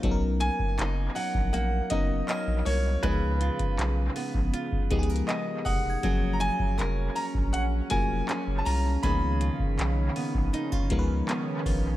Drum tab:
HH |x-----x-----x-----o-----x-----x-----x-----o-----|x-----x--x--x-----o-----x-----x-x-x-x-----o-----|x-----x-----x-----o-----x-----x-----x-----o-----|x-----x-----x-----o-----x-----x-----x-----o-----|
CP |------------x-----------------------x-----------|------------x-----------------------x-----------|------------x-----------------------x-----------|------------x-----------------------x-----------|
BD |o--------o-----------o--------o-----------------|o--------o-----------o-----o--o-----------o-----|o--------o-----------o--------o-----------------|o--------o-----------o-----o--o-----------o-----|